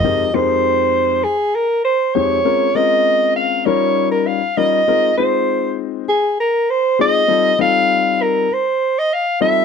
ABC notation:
X:1
M:4/4
L:1/16
Q:1/4=99
K:Fm
V:1 name="Soprano saxophone"
e2 c6 A2 B2 c2 d2- | d2 e4 f2 d3 B f2 e2- | e2 c4 z2 A2 B2 c2 e2- | e2 f4 B2 c3 e f2 =e2 |]
V:2 name="Grand piano"
[F,,A,CEGB]2 [F,,A,CEGB]6 z6 [F,,A,CEGc]2 | [A,CDFB]2 [A,CDFB]6 [G,DEFB]4 z2 [G,DEFB]2 | [A,CEFB]2 [A,CEFc]6 z6 [A,CEFA]2 | [G,CEF=A]2 [G,CEFA]6 z6 [G,CEFA]2 |]